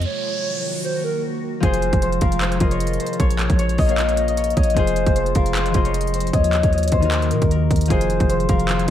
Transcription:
Already playing: riser
0.01 closed hi-hat
0.06 D#3 F#3 A#3 F#4 C#5
0.84 C5
1.04 A#4
1.60 F1 C3 F3 G#3 F4 G#4 C5, kick, closed hi-hat
1.65 C5
1.74 closed hi-hat
1.82 closed hi-hat
1.93 F1, kick, closed hi-hat
2.02 C5, closed hi-hat
2.12 closed hi-hat
2.21 F1 A#4 F5, kick, closed hi-hat
2.32 closed hi-hat
2.41 C5, clap, closed hi-hat
2.52 closed hi-hat
2.58 F1 F3 F4 G#4 D#5, kick, closed hi-hat
2.63 A#4
2.71 C#5, closed hi-hat
2.80 closed hi-hat
2.87 closed hi-hat
2.93 closed hi-hat
3.00 C5, closed hi-hat
3.06 closed hi-hat
3.13 closed hi-hat
3.20 A#1 C#3 A#3 C#5, kick, closed hi-hat
3.30 closed hi-hat
3.39 clap, closed hi-hat
3.50 A#1, kick, closed hi-hat
3.59 C#5, closed hi-hat
3.69 closed hi-hat
3.78 A#1 D#5, kick, open hi-hat
3.86 A#3 A#4 C#5, closed hi-hat
3.91 F5
3.98 C#5, clap, closed hi-hat
4.09 closed hi-hat
4.17 D#5, closed hi-hat
4.28 D#5, closed hi-hat
4.37 C#5, closed hi-hat
4.44 closed hi-hat
4.50 closed hi-hat
4.56 A#1 C#5 D#5, kick, closed hi-hat
4.63 closed hi-hat
4.70 closed hi-hat
4.74 F1 C3 F3 G#3 F4 G#4 C5, kick, closed hi-hat
4.79 C5
4.87 closed hi-hat
4.96 closed hi-hat
5.06 F1, kick, closed hi-hat
5.16 C5, closed hi-hat
5.26 closed hi-hat
5.35 F1 A#4 F5, kick, closed hi-hat
5.46 closed hi-hat
5.55 C5, clap, closed hi-hat
5.66 closed hi-hat
5.72 F1 F3 F4 G#4 D#5, kick, closed hi-hat
5.77 C5
5.85 C#5, closed hi-hat
5.94 closed hi-hat
6.01 closed hi-hat
6.07 closed hi-hat
6.14 C5, closed hi-hat
6.20 closed hi-hat
6.27 closed hi-hat
6.33 D#2 D#3 F#3 A#3 F#4 C#5 D#5, kick, closed hi-hat
6.44 closed hi-hat
6.53 clap, closed hi-hat
6.63 D#2, kick, closed hi-hat
6.73 D#5, closed hi-hat
6.78 closed hi-hat
6.83 closed hi-hat
6.88 closed hi-hat
6.92 D#2 C5, kick, closed hi-hat
7.00 D#3 D#4 F#4, closed hi-hat
7.05 A#4
7.12 C5, clap, closed hi-hat
7.22 closed hi-hat
7.31 A#2 A#4, closed hi-hat
7.42 D#2, kick, closed hi-hat
7.51 A#4, closed hi-hat
7.71 D#2, kick, closed hi-hat
7.76 closed hi-hat
7.81 closed hi-hat
7.86 F3 F4, closed hi-hat
7.90 F1 C3 F3 G#3 F4 G#4 C5, kick, closed hi-hat
8.01 closed hi-hat
8.10 closed hi-hat
8.20 F1, kick, closed hi-hat
8.29 C5, closed hi-hat
8.40 closed hi-hat
8.49 F1 A#4 F5, kick, closed hi-hat
8.60 closed hi-hat
8.69 C5, clap, closed hi-hat
8.79 closed hi-hat
8.86 F3

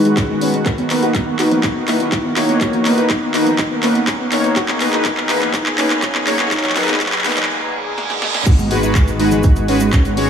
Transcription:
Already playing: G#1 B2 D#3 G#3 F#4
0.05 G#3 F#4 B4, closed hi-hat
0.17 C#4, kick, clap, closed hi-hat
0.29 G#3
0.41 G#3 C#4 F#4 B4, open hi-hat
0.54 G#3, closed hi-hat
0.66 B1 A#3 A#4, kick, clap, closed hi-hat, riser
0.78 B3, closed hi-hat, high conga
0.90 A#3 B3 D#4 B4, clap, open hi-hat
1.03 A#3 D#4 F#4 B4, closed hi-hat
1.15 B3, kick, clap, closed hi-hat
1.27 B3
1.39 A#3 D#4 F#4 B4, clap, open hi-hat
1.51 B3, closed hi-hat, low conga
1.63 F#4, kick, clap, closed hi-hat
1.76 B3
1.88 A#3 D#4 E4 B4, clap, open hi-hat
2.00 B3, closed hi-hat
2.12 E4, kick, clap, closed hi-hat
2.25 B3
2.37 A#3 D#4 E4 C#5, clap, open hi-hat
2.49 B3, closed hi-hat
2.61 F#4, kick, clap, closed hi-hat
2.73 B3, closed hi-hat, high conga, low conga
2.85 A#3 B3 D#4 B4, clap, open hi-hat
2.98 A#3 D#4 B4, closed hi-hat
3.10 B3, kick, clap, closed hi-hat
3.22 B3
3.34 A#3 D#4 B4, clap, open hi-hat
3.47 B3, closed hi-hat, low conga
3.59 D#4, kick, clap, closed hi-hat
3.71 B3
3.83 A#3 C#4 D#4 B4, clap, open hi-hat
3.95 B3, closed hi-hat
4.07 C#4, kick, clap, closed hi-hat
4.20 B3
4.32 A#3 C#4 D#4 C#5, clap, open hi-hat
4.44 B3, closed hi-hat
4.56 F#4 G#4, kick, clap, closed hi-hat
4.68 B3, clap, closed hi-hat, high conga
4.80 A#3 B3 D#4 B4, clap, open hi-hat
4.93 A#3 D#4 B4, clap, closed hi-hat
5.05 B3, kick, clap, closed hi-hat
5.17 B3, clap
5.29 A#3 D#4 B4, clap, open hi-hat
5.42 B3, clap, closed hi-hat, low conga
5.54 D#4, kick, clap, closed hi-hat
5.66 B3, clap
5.78 A#3 C#4 D#4 B4, clap, open hi-hat
5.90 B3, clap, closed hi-hat
6.02 C#4, kick, clap, closed hi-hat
6.15 B3, clap
6.27 A#3 C#4 D#4 C#5, clap, open hi-hat
6.39 B3, clap, closed hi-hat
6.51 D#4, kick, clap, closed hi-hat
6.57 clap
6.64 F#3, clap, closed hi-hat, high conga, low conga
6.70 clap
6.76 F#3 A#3 D#4 B4, clap, open hi-hat, high conga
6.82 clap
6.88 A#3 B3 D#4 B4, clap, closed hi-hat
6.94 clap
7.00 F#3, kick, clap, closed hi-hat
7.06 clap
7.12 F#3, clap, closed hi-hat
7.18 clap
7.24 A#3 B3 D#4 B4, clap, open hi-hat
7.31 clap
7.37 F#3, clap, closed hi-hat, low conga
7.43 clap
7.49 reverse cymbal
7.98 snare
8.10 snare
8.22 snare
8.34 snare
8.46 G#1 D#3 G#3 B3 F#4, kick, closed hi-hat, crash, impact, shaker
8.59 G#3, high conga, shaker
8.71 G#3 F#4 B4, open hi-hat
8.83 G#3 D#4 F#4 B4, closed hi-hat, shaker
8.95 G#3, kick, clap, closed hi-hat, shaker
9.08 G#3, closed hi-hat, shaker
9.20 G#3 D#4 F#4 B4, open hi-hat
9.32 G#3, closed hi-hat, low conga, shaker
9.43 D#4, kick, closed hi-hat, shaker
9.56 G#3, closed hi-hat, shaker
9.68 G#3 C#4 F#4 B4, open hi-hat
9.80 G#3, closed hi-hat, shaker
9.93 C#4, kick, clap, closed hi-hat, shaker
10.05 G#3, closed hi-hat, shaker
10.17 G#3 C#4 F#4 C#5, open hi-hat

